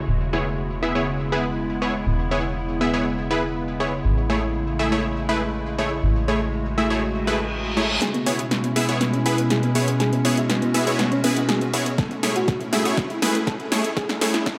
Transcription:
Already playing: G#3
0.08 E1 C#3 B3 E4
0.33 B3 E4 G#4 C#5
0.83 B3 E4 G#4 E5
0.95 B3 E4 G#4 C#5
1.32 B3 E4 G#4 B4
1.82 B3 E4 G#4 C#5
2.07 E1
2.31 B3 E4 G#4 C#5
2.81 B3 E4 G#4 E5
2.94 B3 E4 G#4 C#5
3.31 B3 E4 G#4 B4
3.80 B3 E4 G#4 C#5
4.05 A1 G#3 A3 E4
4.30 A3 E4 G#4 C#5
4.79 A3 E4 G#4 E5
4.92 A3 E4 G#4 C#5
5.29 A3 E4 G#4 B4
5.78 A3 E4 G#4 C#5
6.03 A1 F#4
6.28 A3 E4 G#4 C#5
6.78 A3 E4 G#4 E5
6.90 A3 E4 G#4 C#5
7.03 reverse cymbal
7.27 A3 E4 G#4 B4
7.77 A3 E4 G#4 C#5
8.02 B2 G#3 C#4 E4 G#4, snare, closed hi-hat, riser
8.14 B3, closed hi-hat
8.26 B3 E4 G#4 C#5, open hi-hat
8.39 E4, closed hi-hat
8.51 B3, snare, closed hi-hat
8.64 B3, closed hi-hat
8.76 B3 E4 G#4 E5, open hi-hat
8.89 B3 E4 G#4 C#5, closed hi-hat
9.01 B3, snare, closed hi-hat
9.13 C#4, closed hi-hat
9.26 B3 E4 G#4 B4, open hi-hat
9.38 B3, closed hi-hat
9.50 G#4, snare, closed hi-hat
9.63 B3, closed hi-hat
9.75 B3 E4 G#4 C#5, open hi-hat
9.88 B3, closed hi-hat
10.00 F#4 G#4, snare, closed hi-hat
10.13 B3, closed hi-hat
10.25 B3 E4 G#4 C#5, open hi-hat
10.37 E4, closed hi-hat
10.50 B3, snare, closed hi-hat
10.62 B3, closed hi-hat
10.74 B3 E4 G#4 E5, open hi-hat
10.87 B3 E4 G#4 C#5, closed hi-hat
10.99 B3, snare, closed hi-hat
11.12 C#4, closed hi-hat
11.24 B3 E4 G#4 B4, open hi-hat
11.37 B3, closed hi-hat
11.49 G#4, snare, closed hi-hat
11.61 B3, closed hi-hat
11.74 B3 E4 G#4 C#5, open hi-hat
11.86 B3, closed hi-hat
11.98 A2 E4 A4, kick, snare, closed hi-hat
12.11 A3, closed hi-hat
12.23 A3 E4 G#4 C#5, snare, open hi-hat
12.36 F#4, closed hi-hat
12.48 A3, kick, snare, closed hi-hat
12.61 A3, closed hi-hat
12.73 A3 E4 G#4 E5, snare, open hi-hat
12.85 A3 E4 F#4 G#4 C#5, closed hi-hat
12.97 A3, kick, snare, closed hi-hat
13.10 E4, closed hi-hat
13.22 A3 E4 G#4 B4, snare, open hi-hat
13.35 A3, closed hi-hat
13.47 A4, kick, snare, closed hi-hat
13.60 A3, closed hi-hat
13.72 A3 E4 G#4 C#5, snare, open hi-hat
13.84 A3, closed hi-hat
13.97 G#4, kick, snare, closed hi-hat
14.09 A3, snare, closed hi-hat
14.21 A3 E4 G#4 C#5, snare, open hi-hat
14.34 E4, snare, closed hi-hat
14.46 A3, kick, snare, closed hi-hat

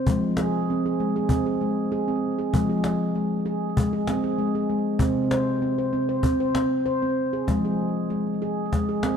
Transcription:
0.07 F3 G#3, cajon bass
0.37 G#4, cajon slap
0.68 C4, cajon slap
0.86 G#4
0.99 G#3, cajon slap
1.16 G#4
1.29 C4, cajon bass
1.46 G#4, cajon slap
1.61 G#3
1.91 G#4, cajon slap
2.08 C4
2.39 G#4
2.53 F3 G#3, cajon bass
2.69 G#4
2.84 cajon slap
3.15 G#3, cajon slap
3.46 G#4
3.77 G#3, cajon bass
3.93 G#4, cajon slap
4.07 C4, cajon slap
4.24 G#4
4.39 G#3, cajon slap
4.55 G#4
4.70 G#3
4.99 C3 C4, cajon bass
5.31 C5, cajon slap
5.62 C4, cajon slap
5.78 C5
5.93 C4, cajon slap
6.09 C5
6.23 C4, cajon bass
6.39 C5, cajon slap
6.55 C4, cajon slap
6.86 C5, cajon slap
7.02 C4
7.33 G#4
7.47 F3 G#3, cajon bass, cajon slap
7.65 G#4
8.10 G#3, cajon slap
8.27 cajon slap
8.42 G#4, cajon slap
8.73 G#3, cajon bass, cajon slap
8.89 G#4
9.03 C4, cajon slap

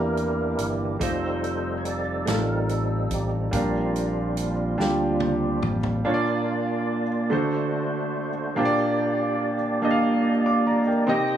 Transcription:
Already playing: E2 C3 E3 A#3 D4 E4 G4 A#4 C5
0.17 closed hi-hat
0.59 G1, closed hi-hat
0.99 F1 G3 A3 C4 D#4 F4 A4 C5, kick, closed hi-hat
1.04 C5
1.44 closed hi-hat
1.78 C#5
1.85 D5, closed hi-hat
2.25 A1 A3 D#4 F4 A4, snare, closed hi-hat
2.30 A#4
2.69 A4, closed hi-hat
3.11 A1 G4, kick, closed hi-hat
3.51 A#1 A#2 G3 C4 D4 F4 A#4, kick, closed hi-hat
3.96 closed hi-hat
4.37 closed hi-hat
4.78 D2 G3 D4 F4 G4, snare
5.20 high tom
5.63 A1, mid tom
5.83 floor tom
6.05 A#2 A#3 D4 F4 C#5 D5
6.14 D5
7.30 D3 A3 D4 F#4 C5
8.56 A#2 A#3 D4 G4 C5 D5
8.65 D5
9.82 A#3 D4 G4 D#5
9.91 F5
10.46 F5 D6
10.67 D5 A#5
10.87 A#4 G5
11.07 C3 C4 D#4 G4 D#5

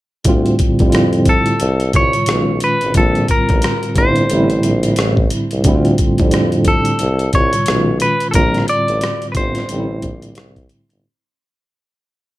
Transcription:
0.25 D2 A2 D3 G3 C4, kick, closed hi-hat
0.29 F4
0.46 closed hi-hat
0.59 kick, closed hi-hat
0.79 F2 A2 D3 G3 C4, kick, closed hi-hat
0.83 E4
0.89 F4, closed hi-hat
0.95 cross-stick
1.13 closed hi-hat
1.25 A4, kick, closed hi-hat
1.46 closed hi-hat
1.60 C2, closed hi-hat
1.80 closed hi-hat
1.93 C2 A2 C3 D3 G3 C#5, kick, closed hi-hat
1.97 F4
2.13 closed hi-hat
2.26 B1 A#2 D#3 G#3 C#4, cross-stick, closed hi-hat
2.31 F4
2.48 B1
2.60 B4, closed hi-hat
2.81 G#1, closed hi-hat
2.94 A#1 A2 D3 G3 C4 A4, kick, closed hi-hat
2.98 F4
3.15 closed hi-hat
3.28 A#4, kick, closed hi-hat
3.49 A1, kick, closed hi-hat
3.62 cross-stick, closed hi-hat
3.83 closed hi-hat
3.96 G1 A2 D3 G3 C4 C5, kick, closed hi-hat
4.00 E4
4.16 closed hi-hat
4.30 A1 A2 D3 G3 C4, closed hi-hat
4.34 E4
4.50 closed hi-hat
4.63 A#1, closed hi-hat
4.83 closed hi-hat
4.96 A1, cross-stick, closed hi-hat
5.17 kick
5.30 closed hi-hat
5.51 C2, closed hi-hat
5.64 D2 A2 D3 G3 C4, kick, closed hi-hat
5.68 E4
5.75 F4
5.85 closed hi-hat
5.98 kick, closed hi-hat
6.18 F2 A2 D3 G3 C4, kick, closed hi-hat
6.23 D4
6.31 cross-stick, closed hi-hat
6.52 closed hi-hat
6.65 A4, kick, closed hi-hat
6.85 closed hi-hat
6.99 C2, closed hi-hat
7.19 closed hi-hat
7.33 C2 A2 C3 D3 G3 C#5, kick, closed hi-hat
7.37 F4
7.53 closed hi-hat
7.66 B1 A#2 C#3 G#3 C#4, cross-stick, closed hi-hat
7.71 D#3 F4
8.00 B4, closed hi-hat
8.20 closed hi-hat
8.31 A#1 A2 D3 A4, kick, closed hi-hat
8.35 G3 C4 F4 A#4
8.54 cross-stick, closed hi-hat
8.68 D5, closed hi-hat
8.88 A1, closed hi-hat
9.01 cross-stick, closed hi-hat
9.22 closed hi-hat
9.32 G1 A2 B4, kick, closed hi-hat
9.36 D3 G3 C4 F4 C5
9.55 cross-stick, closed hi-hat
9.69 A1 A2 D3 G3 C4, closed hi-hat
9.73 D#4
9.79 E4
10.02 A#1, kick, closed hi-hat
10.22 closed hi-hat
10.35 C2, cross-stick, closed hi-hat
10.56 kick, closed hi-hat
10.69 closed hi-hat
10.90 G1, closed hi-hat

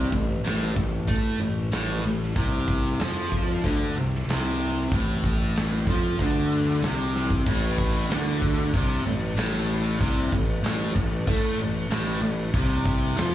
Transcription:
Already playing: C3
0.12 A1 A2, kick, ride
0.44 A1 A2, snare, ride
0.76 A1 A2, kick, ride
1.08 A2 A3, kick, ride
1.40 A1 A2, ride
1.72 A1 A2, snare, ride
2.04 A1 A2, ride
2.23 snare
2.36 C2 C3, kick, ride
2.68 kick, ride
3.00 F2 F3, snare, ride
3.32 kick, ride
3.64 D2 D3, kick, ride
3.95 C2 C3, ride
4.15 snare
4.27 C2 C3, snare, ride
4.60 ride
4.92 A1 A2, kick, ride
5.24 kick, ride
5.56 snare, ride
5.87 F2 F3, kick, ride
6.19 D2 D3, kick, ride
6.52 ride
6.68 snare
6.82 C2 C3, snare, ride
7.16 snare
7.30 kick
7.46 A1 A2, kick, crash
7.78 kick, crash
8.10 D2 D3, snare, crash
8.42 kick, crash
8.74 C2 C3, kick, crash
9.05 A1 A2, crash
9.24 snare
9.36 A1 A2, snare, crash
9.69 crash
10.00 C2 C3, kick, crash
10.32 A1 A2, kick, crash
10.63 A1 A2, snare, crash
10.95 A1 A2, kick, crash
11.27 A2 A3, kick, crash
11.58 A1 A2, crash
11.90 A1 A2, snare, crash
12.22 A1 A2, crash
12.54 C2 C3, kick, crash
12.85 kick, crash
13.17 F2 F3, snare, crash

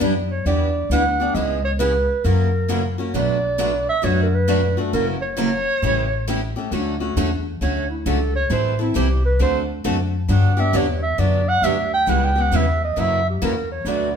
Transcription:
0.00 F#2 E3 G3 B3 D4 E4 G4 B4
0.31 C#5
0.45 E2 E3 G3 B3 D4 E4 G4 B4 D5
0.89 D2 E3 G3 B3 D4 E4 G4 B4 F#5
1.20 B3 D4 G4
1.34 C#2 C#3 E3 G#3 B3 C#4 E4 G#4 D#5
1.65 C#5
1.79 C#3 E3 G#3 B3 C#4 E4 G#4 B4
2.24 F#2 C#3 E3 F#3 A#3 C#4 E4 F#4 A#4
2.68 C#3 E3 F#3 A#3 C#4 E4 F#4 A#4
2.98 A#3 C#4 F#4
3.14 B1 B2 F#3 A3 D4 F#4 B4 D5
3.58 B2 F#3 A3 D4 F#4 B4
3.89 E5
4.03 F#2 B2 F#3 A3 D4 F#4 B4 C#5
4.23 A#4
4.34 B4
4.48 B2 F#3 A3 D4 F#4 B4
4.77 A3 D4 F#4
4.93 F#1 C#3 E3 F#3 A#3 C#4 E4 F#4 A#4
5.22 C#5
5.37 C#3 E3 F#3 A#3 C#4 E4 F#4 A#4
5.82 A1 C#3 E3 G3 A3 C#4 E4 G4 A4
6.28 C#3 E3 G3 A3 C#4 E4 G4 A4
6.56 A3 C#4 G4
6.71 D2 D3 F#3 A3 C#4 F#4 A4
7.00 A3 C#4 F#4
7.16 E2 D3 F#3 A3 C#4 F#4 A4
7.61 D2 D3 F#3 A3 C#4 F#4 A4 C#5
7.90 E4
8.05 C#2 D3 F#3 A3 C#4 F#4 A4
8.36 C#5
8.50 A1 E3 G3 C4 E4 A4 C5
8.79 C4 E4 A4
8.94 C2 E3 G3 C4 E4 G4 A4
9.25 B4
9.40 D2 D3 A3 C4 F#4 A4 C5
9.84 F#2 D3 A3 C4 F#4 A4
10.28 G2 D3 F#3 B3 D4 G4 F#5
10.57 B3 D4 G4 E5
10.73 E2 D3 F#3 B3 D4 G4 C#5
11.03 E5
11.18 F#2 D3 F#3 B3 D4 G4 D5
11.48 F#5
11.62 D2 D3 F#3 B3 D4 G4 E5
11.94 G5
12.07 C#2 C#3 E3 G3 B3 C#4 E4 G4 B4 F#5
12.24 G5
12.36 B3 C#4 G4
12.41 F#5
12.52 E2 C#3 E3 G3 B3 C#4 E4 G4 B4 E5
12.84 D#5
12.96 F#2 C#3 E3 F#3 A#3 C#4 E4 F#4 A#4 E5
13.30 G4
13.42 E2 C#3 E3 F#3 A#3 C#4 E4 F#4 A#4
13.72 C#5
13.85 D2 B2 F#3 A3 D4 F#4 B4 D5

